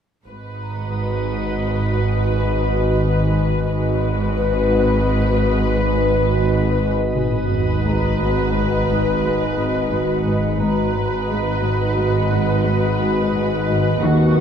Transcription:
0.25 3.64 G#1 soft
0.25 3.63 G#2 soft
0.25 3.63 F#4 soft
0.25 3.63 B4 soft
0.25 3.64 B4 soft
0.25 3.63 D#5 soft
0.63 2.63 A#5 soft
3.67 7.11 G#1 medium
3.67 6.91 G#1 soft
3.67 6.90 G#2 soft
3.67 7.11 F#4 soft
3.67 6.91 B4 soft
3.67 7.12 B4 soft
3.67 7.11 D#5 soft
4.37 6.41 B4 soft
7.14 10.56 G#1 soft
7.14 10.57 G#1 soft
7.14 10.56 G#2 soft
7.14 7.36 G#2 soft
7.14 10.56 F#4 soft
7.14 10.56 B4 soft
7.14 10.57 B4 soft
7.14 10.56 D#5 soft
7.14 sub drop soft
7.50 7.71 G#2 soft
7.86 8.06 G#3 soft
7.86 9.88 A#5 soft
8.20 8.41 G#2 soft
8.54 8.75 G#2 soft
8.89 9.10 G#2 soft
9.24 9.44 G#3 soft
9.57 9.78 G#2 soft
9.91 10.12 G#2 soft
10.26 10.46 G#2 soft
10.60 13.98 G#1 soft
10.60 13.98 G#1 medium
10.60 13.97 G#2 soft
10.60 10.81 G#2 soft
10.60 13.98 F#4 soft
10.60 13.98 B4 soft
10.60 13.98 D#5 soft
10.60 12.61 A#5 soft
10.95 11.15 G#2 soft
11.29 11.49 G#3 soft
11.62 11.83 G#2 soft
11.97 12.18 G#2 soft
12.31 12.52 G#2 soft
12.65 12.86 G#3 soft
12.99 13.20 G#2 soft
13.33 13.54 G#2 soft
13.67 13.88 G#2 soft
13.67 14.40 D#5 soft
14.00 14.40 D#2 soft
14.00 14.40 D#2 medium
14.00 14.22 D#3 soft
14.00 14.40 F#4 soft
14.00 14.40 A#4 soft
14.00 14.40 D#5 soft
14.35 14.40 D#3 soft

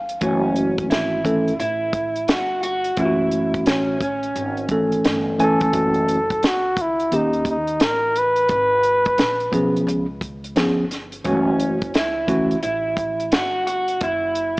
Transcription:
0.00 0.18 G1 medium
0.00 0.19 F5 medium
0.09 closed hi-hat soft
0.21 0.91 F#1 loud
0.21 1.20 E3 medium
0.21 1.20 A3 medium
0.21 0.90 C#4 medium
0.21 1.20 C#4 medium
0.21 1.20 F#4 medium
0.21 kick medium
0.21 closed hi-hat medium
0.56 closed hi-hat medium
0.78 kick medium
0.78 closed hi-hat soft
0.90 1.57 G#1 medium
0.90 1.58 E4 medium
0.90 snare loud
0.90 closed hi-hat medium
1.24 1.52 E3 medium
1.24 1.52 A3 medium
1.24 1.52 C#4 medium
1.24 1.52 A4 medium
1.24 kick medium
1.24 closed hi-hat medium
1.48 closed hi-hat soft
1.59 2.29 A1 medium
1.59 2.31 E4 medium
1.59 closed hi-hat medium
1.93 kick medium
1.93 closed hi-hat medium
2.16 closed hi-hat soft
2.28 2.95 G1 medium
2.28 2.62 F#4 medium
2.28 snare loud
2.28 closed hi-hat medium
2.63 2.99 F#4 loud
2.63 closed hi-hat medium
2.84 closed hi-hat soft
2.97 3.66 F#1 medium
2.97 3.96 E3 medium
2.97 3.97 A3 medium
2.97 3.97 C#4 medium
2.97 3.63 E4 medium
2.97 3.07 F4 medium
2.97 kick loud
2.97 closed hi-hat medium
3.06 4.00 F#4 medium
3.31 closed hi-hat medium
3.54 kick medium
3.54 closed hi-hat soft
3.66 4.32 A1 medium
3.66 4.00 C#4 medium
3.66 snare loud
3.66 closed hi-hat medium
4.01 5.35 C#4 medium
4.01 kick medium
4.01 closed hi-hat medium
4.23 closed hi-hat soft
4.35 5.01 G#1 medium
4.35 closed hi-hat medium
4.57 closed hi-hat soft
4.69 5.38 E3 medium
4.69 5.38 A3 medium
4.69 5.39 C#4 medium
4.69 5.69 A4 medium
4.69 kick medium
4.69 closed hi-hat medium
4.92 closed hi-hat soft
5.04 5.70 G1 medium
5.04 snare loud
5.04 closed hi-hat medium
5.39 5.72 E3 medium
5.39 5.72 A3 medium
5.39 5.73 C#4 medium
5.39 6.48 A4 medium
5.39 5.74 G#5 medium
5.39 closed hi-hat medium
5.61 kick medium
5.61 closed hi-hat medium
5.73 6.39 F#1 loud
5.73 6.16 E3 medium
5.73 6.17 A3 medium
5.73 6.17 C#4 medium
5.73 6.17 F#4 medium
5.73 kick medium
5.73 closed hi-hat medium
5.94 closed hi-hat soft
6.08 closed hi-hat medium
6.30 kick medium
6.30 closed hi-hat soft
6.43 7.08 C#2 medium
6.43 6.83 F#4 medium
6.43 snare loud
6.43 closed hi-hat medium
6.77 kick medium
6.77 closed hi-hat medium
6.81 7.17 E4 medium
7.00 closed hi-hat soft
7.12 7.77 D#2 medium
7.12 7.55 D#3 medium
7.12 7.55 A#3 medium
7.12 7.56 C#4 medium
7.12 7.48 D#4 medium
7.12 7.56 G4 medium
7.12 closed hi-hat medium
7.33 closed hi-hat soft
7.45 kick medium
7.45 closed hi-hat medium
7.51 7.85 D#4 medium
7.67 closed hi-hat soft
7.80 8.46 A1 medium
7.80 8.20 A#4 loud
7.80 snare loud
7.80 closed hi-hat medium
8.16 9.89 B4 loud
8.16 closed hi-hat medium
8.36 closed hi-hat soft
8.49 9.15 G#1 loud
8.49 kick loud
8.49 closed hi-hat medium
8.83 closed hi-hat medium
9.05 kick medium
9.05 closed hi-hat soft
9.18 9.51 A#1 medium
9.18 snare medium
9.18 closed hi-hat medium
9.40 closed hi-hat soft
9.52 9.86 B1 medium
9.52 10.04 F3 medium
9.52 10.05 B3 medium
9.52 10.05 C#4 medium
9.52 10.05 G#4 medium
9.52 kick medium
9.52 closed hi-hat medium
9.76 closed hi-hat soft
9.87 10.58 C#2 medium
9.87 closed hi-hat medium
10.21 kick medium
10.21 closed hi-hat medium
10.44 closed hi-hat soft
10.56 11.22 G1 medium
10.56 10.83 F3 medium
10.56 10.83 B3 medium
10.56 10.84 C#4 medium
10.56 10.84 G#4 medium
10.56 snare loud
10.56 closed hi-hat medium
10.91 snare soft
10.91 closed hi-hat medium
11.12 closed hi-hat medium
11.24 11.91 F#1 loud
11.24 11.77 E3 medium
11.24 11.34 G#3 medium
11.24 11.77 C#4 medium
11.24 11.95 C#4 medium
11.24 11.78 F#4 medium
11.24 kick loud
11.24 closed hi-hat medium
11.32 11.80 A3 medium
11.60 closed hi-hat medium
11.82 kick medium
11.82 closed hi-hat soft
11.94 12.60 C#2 medium
11.94 12.62 E4 medium
11.94 snare loud
11.94 closed hi-hat medium
12.27 12.55 E3 medium
12.27 12.55 A3 medium
12.27 12.56 C#4 medium
12.27 12.56 F#4 medium
12.27 kick medium
12.27 closed hi-hat medium
12.51 closed hi-hat soft
12.63 13.29 A1 medium
12.63 13.34 E4 medium
12.63 closed hi-hat medium
12.97 kick medium
12.97 closed hi-hat medium
13.20 closed hi-hat soft
13.32 13.98 G1 medium
13.32 13.66 F#4 loud
13.32 snare loud
13.32 closed hi-hat medium
13.67 14.02 F#4 medium
13.67 closed hi-hat medium
13.88 closed hi-hat medium
14.01 14.60 F#1 medium
14.01 14.60 E4 medium
14.01 kick loud
14.01 closed hi-hat medium
14.35 closed hi-hat medium

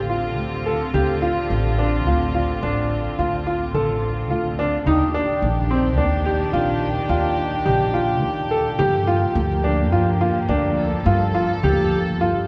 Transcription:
0.00 0.38 A1 medium
0.00 4.82 D3 medium
0.00 4.82 C4 medium
0.00 4.82 F4 medium
0.10 0.41 F4 medium
0.38 0.82 D2 medium
0.66 0.82 A4 medium
0.94 1.38 D2 medium
0.94 1.10 G4 medium
0.94 frame drum medium
1.22 1.53 F4 medium
1.50 2.07 A1 medium
1.50 frame drum soft
1.79 1.94 D4 medium
2.07 2.51 D2 medium
2.07 2.22 F4 medium
2.35 2.50 F4 medium
2.35 frame drum soft
2.63 3.07 A1 medium
2.63 2.94 D4 medium
3.19 3.62 D2 medium
3.19 3.34 F4 medium
3.47 3.62 F4 medium
3.74 4.30 A1 medium
3.74 4.05 A4 medium
3.74 frame drum soft
4.30 4.74 D2 medium
4.30 4.46 F4 medium
4.59 4.74 D4 medium
4.86 5.30 D#2 medium
4.86 8.75 D#3 medium
4.86 8.75 D4 medium
4.86 5.02 D#4 medium
4.86 10.73 G4 medium
4.86 frame drum medium
5.14 5.45 D4 medium
5.42 5.98 A#1 medium
5.42 frame drum soft
5.71 5.86 C4 medium
5.98 6.41 D#2 medium
5.98 6.13 D4 medium
6.26 6.41 G4 medium
6.26 frame drum soft
6.53 6.97 A#1 medium
6.53 6.84 F4 medium
7.09 7.53 D#2 medium
7.09 7.40 F4 medium
7.65 8.23 A#1 medium
7.65 7.81 G4 medium
7.65 frame drum medium
7.94 8.25 F4 medium
8.23 8.67 D#2 medium
8.51 8.66 A4 medium
8.78 9.23 G2 medium
8.78 12.47 F3 medium
8.78 12.47 A#3 medium
8.78 8.94 G4 medium
8.78 frame drum medium
9.07 9.38 F4 medium
9.35 9.92 D2 medium
9.64 9.80 D4 medium
9.92 10.37 G2 medium
9.92 10.08 F4 medium
10.21 10.37 F4 medium
10.21 frame drum soft
10.49 10.94 D2 medium
10.49 10.81 D4 medium
10.77 12.47 A4 medium
11.06 11.51 G2 medium
11.06 11.22 F4 medium
11.35 11.50 F4 medium
11.63 12.21 D2 medium
11.63 11.95 G4 medium
11.63 frame drum medium
12.21 12.47 G2 loud
12.21 12.37 F4 medium

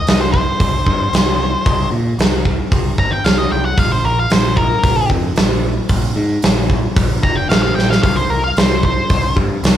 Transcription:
0.07 0.48 C2 medium
0.07 0.21 D#5 medium
0.07 snare loud
0.07 open hi-hat medium
0.21 0.31 C5 medium
0.32 1.88 C5 medium
0.32 kick medium
0.60 0.81 C2 medium
0.60 kick loud
0.60 open hi-hat medium
0.86 1.07 G2 medium
0.86 kick medium
1.13 1.54 C2 medium
1.13 snare loud
1.13 open hi-hat medium
1.66 1.87 C2 loud
1.66 kick loud
1.66 open hi-hat medium
1.92 2.13 A#2 medium
2.18 2.60 C2 medium
2.18 snare loud
2.18 open hi-hat medium
2.45 kick medium
2.72 2.93 C2 medium
2.72 kick loud
2.72 open hi-hat medium
2.98 3.19 G1 medium
2.98 3.12 A#5 medium
2.98 kick medium
3.11 3.24 G5 medium
3.24 3.45 C2 medium
3.24 3.38 F5 medium
3.24 snare loud
3.24 open hi-hat soft
3.38 3.51 D#5 medium
3.52 3.72 C2 medium
3.52 3.65 G5 medium
3.65 3.79 F#5 medium
3.78 3.99 A#1 medium
3.78 3.91 F5 loud
3.78 kick loud
3.78 open hi-hat medium
3.92 4.04 C5 medium
4.04 4.25 A#1 medium
4.04 4.18 A#4 medium
4.19 4.31 F5 medium
4.30 4.72 A#1 medium
4.30 4.57 C5 medium
4.30 snare loud
4.30 open hi-hat medium
4.56 5.08 A#4 medium
4.56 kick medium
4.83 5.05 A#1 medium
4.83 kick loud
4.83 open hi-hat medium
5.10 5.31 F2 medium
5.10 kick medium
5.36 5.79 A#1 medium
5.36 snare loud
5.36 open hi-hat medium
5.89 6.11 A#1 loud
5.89 kick loud
5.89 open hi-hat medium
6.16 6.37 G#2 medium
6.42 6.85 A#1 medium
6.42 snare loud
6.42 open hi-hat medium
6.70 kick medium
6.96 7.17 A#1 medium
6.96 kick loud
6.96 open hi-hat medium
7.23 7.44 F1 medium
7.23 7.36 A#5 medium
7.23 kick medium
7.36 7.49 G5 medium
7.49 7.71 A#1 medium
7.49 7.61 F5 medium
7.49 snare loud
7.49 open hi-hat soft
7.63 7.75 F5 medium
7.75 7.97 A#1 medium
7.75 7.89 G5 medium
7.75 snare medium
7.91 8.02 F5 medium
7.91 snare medium
8.03 8.24 C2 loud
8.03 8.16 F5 medium
8.03 kick loud
8.03 open hi-hat medium
8.16 8.30 C5 medium
8.30 8.51 C2 loud
8.30 8.43 A#4 medium
8.44 8.56 F5 medium
8.57 8.98 C2 medium
8.57 8.83 C5 medium
8.57 snare loud
8.57 open hi-hat medium
8.83 9.35 C5 medium
8.83 kick medium
9.10 9.31 C2 medium
9.10 kick loud
9.10 open hi-hat medium
9.36 9.57 G2 medium
9.36 kick medium
9.63 9.77 C2 medium
9.63 snare loud
9.63 open hi-hat medium

